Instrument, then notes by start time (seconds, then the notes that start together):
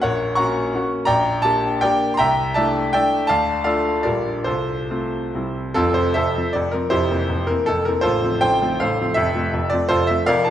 grand piano
0.02 A#1 A#4 C#5 F#5
0.35 A#3 C#4 F#4 F#5 A#5 C#6
0.74 A#3 C#4 F#4
1.05 A#1 D5 G5 A#5
1.42 A#3 D4 G4 A5
1.81 A#3 D4 G4 A#4 D5 G5
2.14 A#5 C6
2.19 C2 E5 G5
2.54 A3 D4 E4 D5 E5 A5
2.93 A3 D4 E4 D5 E5 G5
3.27 D2 D5 F5 A5
3.64 A3 D4 F4 A4 D5 F5
4.03 A#1 G3 D4 F4 G4 A#4 D5
4.44 C2 F4 A4 C5
4.90 A3 C4 F4
5.35 C2 G3 C4 E4
5.74 F1 F2 C4 F4 A4
5.94 F3 C4 C5
6.14 F1 F2 A4 C5 E5
6.37 F3 C4
6.53 F1 F2 D5
6.72 F3 C4 A#4
6.90 F1 F2 E4 G4 C5
7.11 E3 A#3 C4
7.29 F1 F2
7.47 E3 A#3 C4 A#4
7.66 F1 F2 A4
7.85 E3 A#3 C4 A#4
8.01 A0 A1 F4 A4 C5
8.24 F3 A3 C4
8.41 A0 A1 C5 G5
8.62 F3 A3 C4
8.80 A0 A1 A4 C5 F5
9.01 F3 A3 C4
9.14 F1 F2 E5
9.35 F3 A3 C4
9.53 F1 F2
9.70 F3 A3 C4 D5
9.89 F1 F2 F4 A4 C5
10.07 F3 A3 C4 E5
10.26 F1 F2 A#4 D5 F5
10.45 A#3 D4 A5